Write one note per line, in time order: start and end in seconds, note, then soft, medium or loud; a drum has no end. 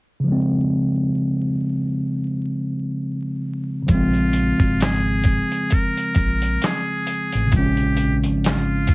0.20 3.81 C#3 medium
0.24 3.85 F3 medium
0.24 3.87 G#3 medium
0.32 3.89 C4 medium
3.82 7.45 C#3 soft
3.87 4.52 A#1 loud
3.87 7.48 F3 medium
3.87 7.49 G#3 medium
3.87 kick medium
3.87 closed hi-hat medium
3.91 7.51 C4 medium
3.91 4.84 F4 medium
4.13 closed hi-hat soft
4.33 closed hi-hat medium
4.60 5.39 G#1 medium
4.60 kick loud
4.60 closed hi-hat soft
4.80 5.75 G#4 medium
4.80 snare loud
4.80 clap medium
4.80 closed hi-hat medium
5.24 kick medium
5.24 closed hi-hat medium
5.52 closed hi-hat soft
5.70 6.67 A#4 medium
5.70 kick medium
5.70 closed hi-hat medium
5.97 closed hi-hat soft
6.15 6.56 A#1 medium
6.15 kick loud
6.15 closed hi-hat medium
6.42 closed hi-hat soft
6.62 7.55 G#4 loud
6.62 snare loud
6.62 clap medium
6.62 closed hi-hat medium
7.07 closed hi-hat medium
7.33 7.51 A1 medium
7.33 closed hi-hat soft
7.47 8.95 C#3 medium
7.51 8.26 A#1 loud
7.51 8.95 F3 medium
7.51 8.95 G#3 medium
7.51 kick medium
7.51 closed hi-hat medium
7.57 8.95 C#4 medium
7.57 8.17 G4 medium
7.77 closed hi-hat soft
7.97 closed hi-hat medium
8.24 8.95 G#1 medium
8.24 closed hi-hat soft
8.45 8.95 F4 medium
8.45 snare loud
8.45 clap medium
8.45 closed hi-hat medium
8.87 kick loud
8.87 closed hi-hat medium